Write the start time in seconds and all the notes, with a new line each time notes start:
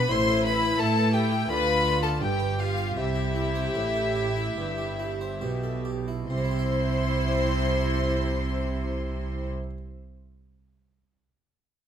Already playing: D4 B4 B5
0.10 A1 A2 E4 C5 C6
0.28 A4
0.44 E4 B4 B5
0.63 E5
0.79 A2 A3 A4 A5
0.97 B4
1.13 G4 A4 G5
1.32 E4
1.49 D2 D3 F4 B4 B5
1.68 A4
1.85 F4
2.03 A4 D5 A5
2.21 G1 G2 G4 G5
2.40 B4
2.59 F4 G4 F5
2.77 F5
2.97 C2 C3 E4 G4 E5
3.16 G4
3.35 E4
3.55 C5
3.75 A1 A2 G4
3.95 A4
4.16 G4
4.37 E4
4.57 G1 G2
4.78 G4
4.99 E4
5.21 C5
5.41 B1 B2 G4
5.63 A4
5.85 G4
6.08 E4
6.29 C2 C3 E4 C5 C6
6.38 C4
6.44 E4
6.51 G4
6.59 E5